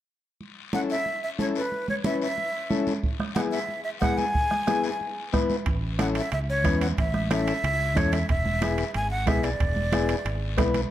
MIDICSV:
0, 0, Header, 1, 6, 480
1, 0, Start_track
1, 0, Key_signature, 3, "major"
1, 0, Tempo, 328228
1, 594, Time_signature, 4, 2, 24, 8
1, 15952, End_track
2, 0, Start_track
2, 0, Title_t, "Flute"
2, 0, Program_c, 0, 73
2, 1087, Note_on_c, 0, 78, 87
2, 1175, Note_off_c, 0, 78, 0
2, 1318, Note_on_c, 0, 76, 92
2, 1764, Note_off_c, 0, 76, 0
2, 1803, Note_on_c, 0, 76, 86
2, 1890, Note_off_c, 0, 76, 0
2, 2045, Note_on_c, 0, 73, 75
2, 2132, Note_off_c, 0, 73, 0
2, 2292, Note_on_c, 0, 71, 81
2, 2732, Note_off_c, 0, 71, 0
2, 2769, Note_on_c, 0, 73, 80
2, 2856, Note_off_c, 0, 73, 0
2, 2998, Note_on_c, 0, 76, 84
2, 3222, Note_off_c, 0, 76, 0
2, 3249, Note_on_c, 0, 76, 81
2, 4146, Note_off_c, 0, 76, 0
2, 4897, Note_on_c, 0, 78, 78
2, 4985, Note_off_c, 0, 78, 0
2, 5137, Note_on_c, 0, 76, 84
2, 5595, Note_off_c, 0, 76, 0
2, 5611, Note_on_c, 0, 76, 78
2, 5699, Note_off_c, 0, 76, 0
2, 5854, Note_on_c, 0, 78, 91
2, 6107, Note_on_c, 0, 80, 103
2, 6129, Note_off_c, 0, 78, 0
2, 7795, Note_off_c, 0, 80, 0
2, 8781, Note_on_c, 0, 78, 76
2, 8869, Note_off_c, 0, 78, 0
2, 9028, Note_on_c, 0, 76, 73
2, 9239, Note_off_c, 0, 76, 0
2, 9254, Note_on_c, 0, 76, 76
2, 9342, Note_off_c, 0, 76, 0
2, 9498, Note_on_c, 0, 73, 80
2, 9938, Note_off_c, 0, 73, 0
2, 9969, Note_on_c, 0, 78, 78
2, 10057, Note_off_c, 0, 78, 0
2, 10217, Note_on_c, 0, 76, 86
2, 10657, Note_off_c, 0, 76, 0
2, 10709, Note_on_c, 0, 76, 89
2, 11654, Note_on_c, 0, 73, 82
2, 11676, Note_off_c, 0, 76, 0
2, 11886, Note_on_c, 0, 76, 83
2, 11908, Note_off_c, 0, 73, 0
2, 12119, Note_off_c, 0, 76, 0
2, 12128, Note_on_c, 0, 76, 97
2, 13026, Note_off_c, 0, 76, 0
2, 13099, Note_on_c, 0, 80, 89
2, 13307, Note_off_c, 0, 80, 0
2, 13316, Note_on_c, 0, 78, 92
2, 13564, Note_on_c, 0, 76, 84
2, 13586, Note_off_c, 0, 78, 0
2, 13798, Note_on_c, 0, 74, 86
2, 13820, Note_off_c, 0, 76, 0
2, 15716, Note_off_c, 0, 74, 0
2, 15952, End_track
3, 0, Start_track
3, 0, Title_t, "Transistor combo organ"
3, 0, Program_c, 1, 18
3, 1071, Note_on_c, 1, 61, 63
3, 1075, Note_on_c, 1, 64, 57
3, 1080, Note_on_c, 1, 69, 69
3, 1410, Note_off_c, 1, 61, 0
3, 1411, Note_off_c, 1, 64, 0
3, 1414, Note_off_c, 1, 69, 0
3, 2025, Note_on_c, 1, 61, 69
3, 2031, Note_on_c, 1, 64, 63
3, 2038, Note_on_c, 1, 69, 68
3, 2367, Note_off_c, 1, 61, 0
3, 2370, Note_off_c, 1, 64, 0
3, 2373, Note_off_c, 1, 69, 0
3, 2988, Note_on_c, 1, 61, 64
3, 2994, Note_on_c, 1, 64, 59
3, 3002, Note_on_c, 1, 71, 71
3, 3329, Note_off_c, 1, 61, 0
3, 3333, Note_off_c, 1, 64, 0
3, 3336, Note_off_c, 1, 71, 0
3, 3949, Note_on_c, 1, 61, 78
3, 3956, Note_on_c, 1, 64, 69
3, 3963, Note_on_c, 1, 69, 86
3, 4291, Note_off_c, 1, 61, 0
3, 4294, Note_off_c, 1, 64, 0
3, 4297, Note_off_c, 1, 69, 0
3, 4911, Note_on_c, 1, 59, 64
3, 4920, Note_on_c, 1, 64, 62
3, 4922, Note_on_c, 1, 68, 73
3, 5252, Note_off_c, 1, 59, 0
3, 5257, Note_off_c, 1, 64, 0
3, 5258, Note_off_c, 1, 68, 0
3, 5870, Note_on_c, 1, 59, 63
3, 5877, Note_on_c, 1, 64, 64
3, 5881, Note_on_c, 1, 68, 77
3, 6212, Note_off_c, 1, 59, 0
3, 6215, Note_off_c, 1, 64, 0
3, 6218, Note_off_c, 1, 68, 0
3, 6830, Note_on_c, 1, 59, 79
3, 6835, Note_on_c, 1, 64, 75
3, 6844, Note_on_c, 1, 68, 86
3, 7172, Note_off_c, 1, 59, 0
3, 7175, Note_off_c, 1, 64, 0
3, 7179, Note_off_c, 1, 68, 0
3, 7793, Note_on_c, 1, 59, 78
3, 7798, Note_on_c, 1, 64, 71
3, 7803, Note_on_c, 1, 71, 85
3, 8134, Note_off_c, 1, 59, 0
3, 8136, Note_off_c, 1, 64, 0
3, 8139, Note_off_c, 1, 71, 0
3, 8753, Note_on_c, 1, 61, 67
3, 8758, Note_on_c, 1, 64, 57
3, 8765, Note_on_c, 1, 69, 70
3, 9094, Note_off_c, 1, 61, 0
3, 9097, Note_off_c, 1, 64, 0
3, 9100, Note_off_c, 1, 69, 0
3, 9714, Note_on_c, 1, 61, 66
3, 9717, Note_on_c, 1, 64, 64
3, 9723, Note_on_c, 1, 71, 76
3, 10054, Note_off_c, 1, 61, 0
3, 10056, Note_off_c, 1, 64, 0
3, 10059, Note_off_c, 1, 71, 0
3, 10681, Note_on_c, 1, 61, 67
3, 10685, Note_on_c, 1, 64, 60
3, 10695, Note_on_c, 1, 69, 78
3, 11018, Note_off_c, 1, 61, 0
3, 11020, Note_off_c, 1, 64, 0
3, 11025, Note_off_c, 1, 69, 0
3, 11628, Note_on_c, 1, 61, 65
3, 11637, Note_on_c, 1, 64, 64
3, 11643, Note_on_c, 1, 69, 74
3, 11971, Note_off_c, 1, 61, 0
3, 11976, Note_off_c, 1, 64, 0
3, 11979, Note_off_c, 1, 69, 0
3, 12593, Note_on_c, 1, 59, 68
3, 12598, Note_on_c, 1, 64, 62
3, 12605, Note_on_c, 1, 68, 72
3, 12933, Note_off_c, 1, 59, 0
3, 12936, Note_off_c, 1, 64, 0
3, 12939, Note_off_c, 1, 68, 0
3, 13546, Note_on_c, 1, 59, 66
3, 13556, Note_on_c, 1, 64, 59
3, 13559, Note_on_c, 1, 68, 75
3, 13889, Note_off_c, 1, 59, 0
3, 13894, Note_off_c, 1, 64, 0
3, 13895, Note_off_c, 1, 68, 0
3, 14514, Note_on_c, 1, 59, 80
3, 14518, Note_on_c, 1, 64, 72
3, 14524, Note_on_c, 1, 68, 84
3, 14852, Note_off_c, 1, 59, 0
3, 14854, Note_off_c, 1, 64, 0
3, 14857, Note_off_c, 1, 68, 0
3, 15458, Note_on_c, 1, 59, 79
3, 15465, Note_on_c, 1, 64, 69
3, 15469, Note_on_c, 1, 71, 82
3, 15803, Note_off_c, 1, 59, 0
3, 15806, Note_off_c, 1, 64, 0
3, 15809, Note_off_c, 1, 71, 0
3, 15952, End_track
4, 0, Start_track
4, 0, Title_t, "Fingered electric bass"
4, 0, Program_c, 2, 33
4, 8287, Note_on_c, 2, 33, 83
4, 9054, Note_off_c, 2, 33, 0
4, 9248, Note_on_c, 2, 37, 81
4, 9727, Note_off_c, 2, 37, 0
4, 9727, Note_on_c, 2, 40, 96
4, 10109, Note_off_c, 2, 40, 0
4, 10209, Note_on_c, 2, 33, 83
4, 10974, Note_off_c, 2, 33, 0
4, 11168, Note_on_c, 2, 37, 88
4, 11651, Note_off_c, 2, 37, 0
4, 11651, Note_on_c, 2, 40, 89
4, 12031, Note_off_c, 2, 40, 0
4, 12135, Note_on_c, 2, 28, 85
4, 12897, Note_off_c, 2, 28, 0
4, 13090, Note_on_c, 2, 32, 85
4, 13571, Note_off_c, 2, 32, 0
4, 13571, Note_on_c, 2, 35, 97
4, 13950, Note_off_c, 2, 35, 0
4, 14046, Note_on_c, 2, 28, 89
4, 14810, Note_off_c, 2, 28, 0
4, 14994, Note_on_c, 2, 32, 86
4, 15479, Note_off_c, 2, 32, 0
4, 15479, Note_on_c, 2, 35, 90
4, 15861, Note_off_c, 2, 35, 0
4, 15952, End_track
5, 0, Start_track
5, 0, Title_t, "Two-headed folk drums"
5, 4436, Note_on_c, 9, 36, 73
5, 4582, Note_off_c, 9, 36, 0
5, 4683, Note_on_c, 9, 37, 64
5, 4829, Note_off_c, 9, 37, 0
5, 4923, Note_on_c, 9, 37, 68
5, 5070, Note_off_c, 9, 37, 0
5, 5877, Note_on_c, 9, 37, 75
5, 5878, Note_on_c, 9, 36, 66
5, 6023, Note_off_c, 9, 37, 0
5, 6024, Note_off_c, 9, 36, 0
5, 6358, Note_on_c, 9, 36, 74
5, 6504, Note_off_c, 9, 36, 0
5, 6595, Note_on_c, 9, 37, 59
5, 6741, Note_off_c, 9, 37, 0
5, 6835, Note_on_c, 9, 37, 73
5, 6981, Note_off_c, 9, 37, 0
5, 7804, Note_on_c, 9, 36, 71
5, 7806, Note_on_c, 9, 37, 74
5, 7950, Note_off_c, 9, 36, 0
5, 7953, Note_off_c, 9, 37, 0
5, 8284, Note_on_c, 9, 36, 75
5, 8430, Note_off_c, 9, 36, 0
5, 8758, Note_on_c, 9, 37, 72
5, 8904, Note_off_c, 9, 37, 0
5, 9722, Note_on_c, 9, 37, 67
5, 9726, Note_on_c, 9, 36, 69
5, 9869, Note_off_c, 9, 37, 0
5, 9872, Note_off_c, 9, 36, 0
5, 10207, Note_on_c, 9, 36, 73
5, 10354, Note_off_c, 9, 36, 0
5, 10445, Note_on_c, 9, 37, 63
5, 10591, Note_off_c, 9, 37, 0
5, 10686, Note_on_c, 9, 37, 74
5, 10832, Note_off_c, 9, 37, 0
5, 11650, Note_on_c, 9, 36, 70
5, 11651, Note_on_c, 9, 37, 72
5, 11796, Note_off_c, 9, 36, 0
5, 11797, Note_off_c, 9, 37, 0
5, 12133, Note_on_c, 9, 36, 76
5, 12279, Note_off_c, 9, 36, 0
5, 12614, Note_on_c, 9, 37, 73
5, 12761, Note_off_c, 9, 37, 0
5, 13567, Note_on_c, 9, 36, 74
5, 13573, Note_on_c, 9, 37, 70
5, 13713, Note_off_c, 9, 36, 0
5, 13719, Note_off_c, 9, 37, 0
5, 14042, Note_on_c, 9, 36, 75
5, 14188, Note_off_c, 9, 36, 0
5, 14526, Note_on_c, 9, 37, 70
5, 14672, Note_off_c, 9, 37, 0
5, 15470, Note_on_c, 9, 37, 69
5, 15474, Note_on_c, 9, 36, 67
5, 15616, Note_off_c, 9, 37, 0
5, 15620, Note_off_c, 9, 36, 0
5, 15952, End_track
6, 0, Start_track
6, 0, Title_t, "Drums"
6, 593, Note_on_c, 9, 63, 31
6, 594, Note_on_c, 9, 74, 57
6, 740, Note_off_c, 9, 63, 0
6, 740, Note_off_c, 9, 74, 0
6, 1068, Note_on_c, 9, 63, 82
6, 1077, Note_on_c, 9, 73, 62
6, 1214, Note_off_c, 9, 63, 0
6, 1223, Note_off_c, 9, 73, 0
6, 1314, Note_on_c, 9, 73, 65
6, 1460, Note_off_c, 9, 73, 0
6, 1548, Note_on_c, 9, 63, 32
6, 1549, Note_on_c, 9, 74, 60
6, 1695, Note_off_c, 9, 63, 0
6, 1695, Note_off_c, 9, 74, 0
6, 2030, Note_on_c, 9, 63, 75
6, 2035, Note_on_c, 9, 73, 60
6, 2176, Note_off_c, 9, 63, 0
6, 2181, Note_off_c, 9, 73, 0
6, 2273, Note_on_c, 9, 73, 61
6, 2420, Note_off_c, 9, 73, 0
6, 2513, Note_on_c, 9, 74, 60
6, 2514, Note_on_c, 9, 63, 32
6, 2660, Note_off_c, 9, 74, 0
6, 2661, Note_off_c, 9, 63, 0
6, 2752, Note_on_c, 9, 63, 62
6, 2898, Note_off_c, 9, 63, 0
6, 2988, Note_on_c, 9, 63, 83
6, 2998, Note_on_c, 9, 73, 61
6, 3134, Note_off_c, 9, 63, 0
6, 3144, Note_off_c, 9, 73, 0
6, 3241, Note_on_c, 9, 73, 59
6, 3387, Note_off_c, 9, 73, 0
6, 3474, Note_on_c, 9, 74, 62
6, 3477, Note_on_c, 9, 63, 33
6, 3621, Note_off_c, 9, 74, 0
6, 3623, Note_off_c, 9, 63, 0
6, 3956, Note_on_c, 9, 63, 77
6, 3956, Note_on_c, 9, 73, 60
6, 4102, Note_off_c, 9, 63, 0
6, 4102, Note_off_c, 9, 73, 0
6, 4195, Note_on_c, 9, 73, 63
6, 4200, Note_on_c, 9, 63, 60
6, 4341, Note_off_c, 9, 73, 0
6, 4347, Note_off_c, 9, 63, 0
6, 4436, Note_on_c, 9, 63, 33
6, 4439, Note_on_c, 9, 74, 63
6, 4583, Note_off_c, 9, 63, 0
6, 4585, Note_off_c, 9, 74, 0
6, 4674, Note_on_c, 9, 63, 66
6, 4820, Note_off_c, 9, 63, 0
6, 4914, Note_on_c, 9, 63, 84
6, 4915, Note_on_c, 9, 73, 66
6, 5060, Note_off_c, 9, 63, 0
6, 5062, Note_off_c, 9, 73, 0
6, 5155, Note_on_c, 9, 73, 64
6, 5301, Note_off_c, 9, 73, 0
6, 5389, Note_on_c, 9, 63, 31
6, 5392, Note_on_c, 9, 74, 63
6, 5536, Note_off_c, 9, 63, 0
6, 5538, Note_off_c, 9, 74, 0
6, 5865, Note_on_c, 9, 73, 62
6, 5874, Note_on_c, 9, 63, 80
6, 6011, Note_off_c, 9, 73, 0
6, 6020, Note_off_c, 9, 63, 0
6, 6109, Note_on_c, 9, 73, 62
6, 6115, Note_on_c, 9, 63, 59
6, 6256, Note_off_c, 9, 73, 0
6, 6261, Note_off_c, 9, 63, 0
6, 6353, Note_on_c, 9, 74, 65
6, 6357, Note_on_c, 9, 63, 32
6, 6499, Note_off_c, 9, 74, 0
6, 6503, Note_off_c, 9, 63, 0
6, 6601, Note_on_c, 9, 63, 63
6, 6747, Note_off_c, 9, 63, 0
6, 6832, Note_on_c, 9, 73, 65
6, 6841, Note_on_c, 9, 63, 82
6, 6978, Note_off_c, 9, 73, 0
6, 6988, Note_off_c, 9, 63, 0
6, 7072, Note_on_c, 9, 73, 59
6, 7218, Note_off_c, 9, 73, 0
6, 7314, Note_on_c, 9, 74, 62
6, 7328, Note_on_c, 9, 63, 33
6, 7460, Note_off_c, 9, 74, 0
6, 7475, Note_off_c, 9, 63, 0
6, 7792, Note_on_c, 9, 73, 66
6, 7805, Note_on_c, 9, 63, 78
6, 7939, Note_off_c, 9, 73, 0
6, 7951, Note_off_c, 9, 63, 0
6, 8037, Note_on_c, 9, 73, 61
6, 8040, Note_on_c, 9, 63, 61
6, 8183, Note_off_c, 9, 73, 0
6, 8187, Note_off_c, 9, 63, 0
6, 8277, Note_on_c, 9, 65, 64
6, 8280, Note_on_c, 9, 63, 33
6, 8286, Note_on_c, 9, 74, 57
6, 8423, Note_off_c, 9, 65, 0
6, 8426, Note_off_c, 9, 63, 0
6, 8432, Note_off_c, 9, 74, 0
6, 8760, Note_on_c, 9, 65, 60
6, 8761, Note_on_c, 9, 63, 82
6, 8770, Note_on_c, 9, 73, 62
6, 8906, Note_off_c, 9, 65, 0
6, 8907, Note_off_c, 9, 63, 0
6, 8916, Note_off_c, 9, 73, 0
6, 8996, Note_on_c, 9, 65, 59
6, 9005, Note_on_c, 9, 73, 66
6, 9142, Note_off_c, 9, 65, 0
6, 9151, Note_off_c, 9, 73, 0
6, 9239, Note_on_c, 9, 65, 61
6, 9240, Note_on_c, 9, 63, 33
6, 9245, Note_on_c, 9, 74, 67
6, 9385, Note_off_c, 9, 65, 0
6, 9387, Note_off_c, 9, 63, 0
6, 9391, Note_off_c, 9, 74, 0
6, 9715, Note_on_c, 9, 63, 81
6, 9721, Note_on_c, 9, 65, 59
6, 9722, Note_on_c, 9, 73, 62
6, 9861, Note_off_c, 9, 63, 0
6, 9867, Note_off_c, 9, 65, 0
6, 9868, Note_off_c, 9, 73, 0
6, 9962, Note_on_c, 9, 63, 56
6, 9965, Note_on_c, 9, 65, 62
6, 9970, Note_on_c, 9, 73, 65
6, 10108, Note_off_c, 9, 63, 0
6, 10111, Note_off_c, 9, 65, 0
6, 10116, Note_off_c, 9, 73, 0
6, 10196, Note_on_c, 9, 63, 31
6, 10204, Note_on_c, 9, 74, 62
6, 10212, Note_on_c, 9, 65, 65
6, 10343, Note_off_c, 9, 63, 0
6, 10351, Note_off_c, 9, 74, 0
6, 10358, Note_off_c, 9, 65, 0
6, 10439, Note_on_c, 9, 63, 66
6, 10585, Note_off_c, 9, 63, 0
6, 10686, Note_on_c, 9, 63, 87
6, 10687, Note_on_c, 9, 73, 62
6, 10693, Note_on_c, 9, 65, 65
6, 10832, Note_off_c, 9, 63, 0
6, 10834, Note_off_c, 9, 73, 0
6, 10839, Note_off_c, 9, 65, 0
6, 10928, Note_on_c, 9, 73, 59
6, 10933, Note_on_c, 9, 65, 60
6, 11074, Note_off_c, 9, 73, 0
6, 11079, Note_off_c, 9, 65, 0
6, 11168, Note_on_c, 9, 74, 63
6, 11172, Note_on_c, 9, 63, 34
6, 11178, Note_on_c, 9, 65, 64
6, 11314, Note_off_c, 9, 74, 0
6, 11319, Note_off_c, 9, 63, 0
6, 11324, Note_off_c, 9, 65, 0
6, 11645, Note_on_c, 9, 63, 75
6, 11654, Note_on_c, 9, 65, 62
6, 11654, Note_on_c, 9, 73, 63
6, 11791, Note_off_c, 9, 63, 0
6, 11800, Note_off_c, 9, 65, 0
6, 11800, Note_off_c, 9, 73, 0
6, 11886, Note_on_c, 9, 63, 61
6, 11887, Note_on_c, 9, 65, 64
6, 11892, Note_on_c, 9, 73, 64
6, 12032, Note_off_c, 9, 63, 0
6, 12033, Note_off_c, 9, 65, 0
6, 12038, Note_off_c, 9, 73, 0
6, 12124, Note_on_c, 9, 65, 61
6, 12132, Note_on_c, 9, 63, 32
6, 12133, Note_on_c, 9, 74, 59
6, 12270, Note_off_c, 9, 65, 0
6, 12279, Note_off_c, 9, 63, 0
6, 12280, Note_off_c, 9, 74, 0
6, 12365, Note_on_c, 9, 63, 67
6, 12511, Note_off_c, 9, 63, 0
6, 12603, Note_on_c, 9, 63, 88
6, 12606, Note_on_c, 9, 65, 66
6, 12610, Note_on_c, 9, 73, 63
6, 12749, Note_off_c, 9, 63, 0
6, 12752, Note_off_c, 9, 65, 0
6, 12757, Note_off_c, 9, 73, 0
6, 12840, Note_on_c, 9, 65, 59
6, 12849, Note_on_c, 9, 73, 66
6, 12986, Note_off_c, 9, 65, 0
6, 12995, Note_off_c, 9, 73, 0
6, 13079, Note_on_c, 9, 65, 64
6, 13081, Note_on_c, 9, 63, 31
6, 13081, Note_on_c, 9, 74, 62
6, 13225, Note_off_c, 9, 65, 0
6, 13227, Note_off_c, 9, 63, 0
6, 13227, Note_off_c, 9, 74, 0
6, 13553, Note_on_c, 9, 63, 79
6, 13556, Note_on_c, 9, 73, 62
6, 13557, Note_on_c, 9, 65, 60
6, 13557, Note_on_c, 9, 66, 62
6, 13700, Note_off_c, 9, 63, 0
6, 13702, Note_off_c, 9, 73, 0
6, 13703, Note_off_c, 9, 65, 0
6, 13703, Note_off_c, 9, 66, 0
6, 13797, Note_on_c, 9, 73, 68
6, 13804, Note_on_c, 9, 65, 59
6, 13944, Note_off_c, 9, 73, 0
6, 13950, Note_off_c, 9, 65, 0
6, 14039, Note_on_c, 9, 63, 33
6, 14039, Note_on_c, 9, 74, 66
6, 14044, Note_on_c, 9, 65, 63
6, 14185, Note_off_c, 9, 63, 0
6, 14185, Note_off_c, 9, 74, 0
6, 14191, Note_off_c, 9, 65, 0
6, 14274, Note_on_c, 9, 63, 67
6, 14420, Note_off_c, 9, 63, 0
6, 14513, Note_on_c, 9, 63, 79
6, 14518, Note_on_c, 9, 65, 63
6, 14519, Note_on_c, 9, 73, 64
6, 14659, Note_off_c, 9, 63, 0
6, 14664, Note_off_c, 9, 65, 0
6, 14665, Note_off_c, 9, 73, 0
6, 14754, Note_on_c, 9, 65, 63
6, 14760, Note_on_c, 9, 73, 65
6, 14900, Note_off_c, 9, 65, 0
6, 14906, Note_off_c, 9, 73, 0
6, 14994, Note_on_c, 9, 74, 63
6, 14997, Note_on_c, 9, 63, 32
6, 15001, Note_on_c, 9, 65, 62
6, 15140, Note_off_c, 9, 74, 0
6, 15143, Note_off_c, 9, 63, 0
6, 15147, Note_off_c, 9, 65, 0
6, 15472, Note_on_c, 9, 73, 65
6, 15476, Note_on_c, 9, 63, 79
6, 15476, Note_on_c, 9, 65, 64
6, 15476, Note_on_c, 9, 66, 65
6, 15619, Note_off_c, 9, 73, 0
6, 15622, Note_off_c, 9, 65, 0
6, 15622, Note_off_c, 9, 66, 0
6, 15623, Note_off_c, 9, 63, 0
6, 15709, Note_on_c, 9, 63, 59
6, 15712, Note_on_c, 9, 65, 58
6, 15713, Note_on_c, 9, 73, 66
6, 15855, Note_off_c, 9, 63, 0
6, 15858, Note_off_c, 9, 65, 0
6, 15859, Note_off_c, 9, 73, 0
6, 15952, End_track
0, 0, End_of_file